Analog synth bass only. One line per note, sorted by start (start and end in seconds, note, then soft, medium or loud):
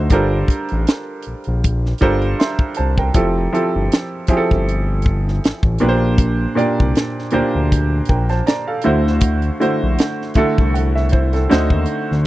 0.11 0.44 G1 loud
0.72 0.86 A1 medium
1.27 1.35 A#1 soft
1.47 1.94 A#1 medium
2.02 2.34 G1 medium
2.79 3.11 C2 medium
3.15 3.48 F1 loud
3.75 3.89 G1 medium
4.29 4.38 G1 soft
4.52 5.40 G1 medium
5.45 5.52 A1 soft
5.64 5.78 A1 medium
5.82 6.47 A#1 medium
6.81 6.94 C2 medium
7.34 7.42 D2 soft
7.55 8.01 D2 medium
8.10 8.42 A#1 medium
8.86 9.51 D2 medium
9.83 9.97 A#1 medium
10.36 10.45 C2 soft
10.59 11.47 C2 medium
11.52 11.69 D2 medium
11.71 11.86 D#2 medium
12.11 12.25 D2 medium